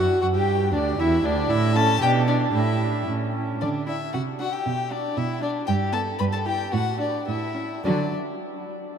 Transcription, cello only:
0, 0, Header, 1, 2, 480
1, 0, Start_track
1, 0, Key_signature, 2, "major"
1, 0, Tempo, 519931
1, 433, Time_signature, 2, 2, 24, 8
1, 5716, Tempo, 548948
1, 8155, End_track
2, 0, Start_track
2, 0, Title_t, "Cello"
2, 0, Program_c, 0, 42
2, 200, Note_on_c, 0, 42, 60
2, 317, Note_on_c, 0, 43, 62
2, 331, Note_off_c, 0, 42, 0
2, 677, Note_on_c, 0, 38, 61
2, 691, Note_off_c, 0, 43, 0
2, 908, Note_off_c, 0, 38, 0
2, 913, Note_on_c, 0, 40, 74
2, 1143, Note_off_c, 0, 40, 0
2, 1151, Note_on_c, 0, 38, 71
2, 1379, Note_off_c, 0, 38, 0
2, 1386, Note_on_c, 0, 45, 80
2, 1803, Note_off_c, 0, 45, 0
2, 1860, Note_on_c, 0, 47, 74
2, 2288, Note_off_c, 0, 47, 0
2, 2344, Note_on_c, 0, 45, 62
2, 2778, Note_off_c, 0, 45, 0
2, 2839, Note_on_c, 0, 45, 50
2, 3274, Note_off_c, 0, 45, 0
2, 3340, Note_on_c, 0, 50, 60
2, 3719, Note_off_c, 0, 50, 0
2, 3823, Note_on_c, 0, 48, 60
2, 4199, Note_off_c, 0, 48, 0
2, 4303, Note_on_c, 0, 47, 65
2, 4674, Note_off_c, 0, 47, 0
2, 4775, Note_on_c, 0, 47, 65
2, 5146, Note_off_c, 0, 47, 0
2, 5247, Note_on_c, 0, 43, 78
2, 5621, Note_off_c, 0, 43, 0
2, 5723, Note_on_c, 0, 43, 67
2, 6086, Note_off_c, 0, 43, 0
2, 6188, Note_on_c, 0, 45, 69
2, 6562, Note_off_c, 0, 45, 0
2, 6665, Note_on_c, 0, 45, 57
2, 7056, Note_off_c, 0, 45, 0
2, 7163, Note_on_c, 0, 50, 59
2, 7428, Note_off_c, 0, 50, 0
2, 8155, End_track
0, 0, End_of_file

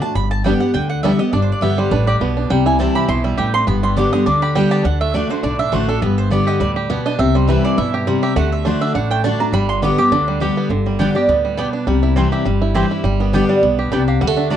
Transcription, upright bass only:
0, 0, Header, 1, 2, 480
1, 0, Start_track
1, 0, Key_signature, 1, "major"
1, 0, Tempo, 292826
1, 257, Time_signature, 4, 2, 24, 8
1, 23878, End_track
2, 0, Start_track
2, 0, Title_t, "Upright bass"
2, 0, Program_c, 0, 32
2, 249, Note_on_c, 0, 31, 96
2, 851, Note_off_c, 0, 31, 0
2, 1214, Note_on_c, 0, 38, 82
2, 1815, Note_off_c, 0, 38, 0
2, 2179, Note_on_c, 0, 31, 93
2, 2479, Note_off_c, 0, 31, 0
2, 2660, Note_on_c, 0, 31, 83
2, 3069, Note_off_c, 0, 31, 0
2, 3136, Note_on_c, 0, 33, 80
2, 3548, Note_off_c, 0, 33, 0
2, 3609, Note_on_c, 0, 35, 80
2, 4024, Note_off_c, 0, 35, 0
2, 4093, Note_on_c, 0, 36, 95
2, 4696, Note_off_c, 0, 36, 0
2, 5055, Note_on_c, 0, 35, 88
2, 5469, Note_off_c, 0, 35, 0
2, 5535, Note_on_c, 0, 33, 82
2, 5949, Note_off_c, 0, 33, 0
2, 6022, Note_on_c, 0, 31, 104
2, 6623, Note_off_c, 0, 31, 0
2, 6982, Note_on_c, 0, 38, 86
2, 7583, Note_off_c, 0, 38, 0
2, 7941, Note_on_c, 0, 38, 98
2, 8542, Note_off_c, 0, 38, 0
2, 8898, Note_on_c, 0, 35, 83
2, 9312, Note_off_c, 0, 35, 0
2, 9374, Note_on_c, 0, 33, 81
2, 9789, Note_off_c, 0, 33, 0
2, 9863, Note_on_c, 0, 31, 94
2, 10464, Note_off_c, 0, 31, 0
2, 10819, Note_on_c, 0, 38, 85
2, 11420, Note_off_c, 0, 38, 0
2, 11784, Note_on_c, 0, 36, 103
2, 12384, Note_off_c, 0, 36, 0
2, 12747, Note_on_c, 0, 43, 86
2, 13346, Note_off_c, 0, 43, 0
2, 13702, Note_on_c, 0, 38, 100
2, 14302, Note_off_c, 0, 38, 0
2, 14662, Note_on_c, 0, 33, 93
2, 15261, Note_off_c, 0, 33, 0
2, 15610, Note_on_c, 0, 31, 101
2, 16212, Note_off_c, 0, 31, 0
2, 16580, Note_on_c, 0, 38, 86
2, 17179, Note_off_c, 0, 38, 0
2, 17528, Note_on_c, 0, 31, 93
2, 18131, Note_off_c, 0, 31, 0
2, 18485, Note_on_c, 0, 38, 78
2, 19088, Note_off_c, 0, 38, 0
2, 19454, Note_on_c, 0, 36, 89
2, 20054, Note_off_c, 0, 36, 0
2, 20413, Note_on_c, 0, 31, 83
2, 21013, Note_off_c, 0, 31, 0
2, 21369, Note_on_c, 0, 31, 99
2, 21970, Note_off_c, 0, 31, 0
2, 22333, Note_on_c, 0, 35, 81
2, 22744, Note_off_c, 0, 35, 0
2, 22810, Note_on_c, 0, 36, 85
2, 23222, Note_off_c, 0, 36, 0
2, 23297, Note_on_c, 0, 38, 90
2, 23878, Note_off_c, 0, 38, 0
2, 23878, End_track
0, 0, End_of_file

